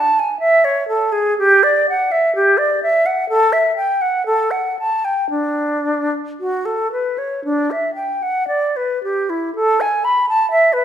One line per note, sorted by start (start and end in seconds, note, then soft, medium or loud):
0.00 0.21 A5 medium
0.19 0.39 G#5 medium
0.40 0.66 E5 medium
0.64 0.88 C#5 medium
0.88 1.14 A4 medium
1.12 1.37 G#4 medium
1.38 1.65 G4 medium
1.63 1.87 D5 medium
1.89 2.13 F#5 medium
2.12 2.34 E5 medium
2.36 2.59 G4 medium
2.58 2.81 D5 medium
2.83 3.08 E5 medium
3.06 3.28 F#5 medium
3.29 3.54 A4 loud
3.53 3.76 E5 medium
3.77 4.03 G5 medium
4.01 4.26 F#5 medium
4.26 4.53 A4 medium
4.51 4.77 F#5 medium
4.79 5.06 A5 medium
5.05 5.30 G5 medium
5.30 6.15 D4 medium
6.40 6.67 F#4 medium
6.65 6.92 A4 medium
6.92 7.20 B4 medium
7.18 7.44 C#5 medium
7.44 7.73 D4 medium
7.71 7.94 E5 medium
7.95 8.24 G5 medium
8.22 8.47 F#5 medium
8.48 8.78 D5 medium
8.76 9.02 B4 medium
9.03 9.31 G4 medium
9.30 9.54 E4 medium
9.55 9.82 A4 medium
9.81 10.06 G#5 medium
10.04 10.26 B5 medium
10.29 10.50 A5 medium
10.51 10.74 E5 medium
10.73 10.85 B4 medium